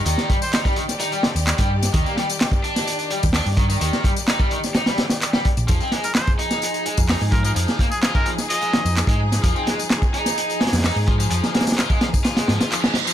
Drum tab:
HH |x---x---x---x---x-x-x---x-x---x-|x---x-x-x---x---x-x-x---o---x---|x---x---x---x---x-x-x-x-x---x---|x---x-x-x---x---x-x-x---o---x---|
TB |x-x---x-x-x---x-x-x---x-x-x---x-|x-x---x-x-x---x-x-x---x-x-x---x-|x-x---x-x-x---x-x-x---x-x-x---x-|x-x---x-x-x---x-x-x---x-x-x---x-|
CP |--------x---------------x-------|--------x---------------x-------|--------x---------------x-------|--------x---------------x-------|
SD |--o-----o-----o-----o---o-----o-|----o---o-----o---------o-------|--o-----o-----o-o-o-o-o---o-----|----o---o-----o---------o-------|
BD |----o-----o---------------o-----|o---------o-----------o-----o---|----o-----o-----------------o---|o---------o-----------o-----o---|

HH |x---x---x---x---x-x-x---x-x---x-|x---x-x-x---x---x-x-xxxxo---x---|x---xxxxx---x---x-x-x-x-x---x---|
TB |x-x---x-x-x---x-x-x---x-x-x---x-|x-x---x-x-x---x-x-x---x-x-x---x-|x-x---x-x-x---x-x-x---x-x-x---x-|
CP |--------x---------------x-------|--------x---------------x-------|--------x---------------x-------|
SD |--o-----o-----o-----o---o-----o-|----o---o-----o-----ooooo-------|--o-ooooo---o---o-o-o-o---o-o---|
BD |----o-----o---------------o-----|o---------o-----------------o---|----------o---o-----------------|